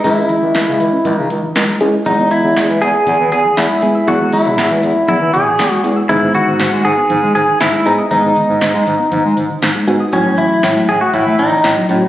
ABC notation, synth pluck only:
X:1
M:4/4
L:1/16
Q:1/4=119
K:G#phr
V:1 name="Synth pluck" clef=bass
E, E, E, E, E, G, E, C E, E, E, E, E, G, G d | E, E, E, E, E, G, E, B, E, E, E, E, E, G, g e' | E, E, E, E, E, G, E, B, E, E, E, E, E, G, g e' | D, D, D, D, D, G, D, B, D, D, D, D, D, G, g d' |
D, D, D, D, D, G, D, B, D, D, D, D, D, G, g d' | E, E, E, E, E, F, E, A, E, E, E, E, E, F, F c |]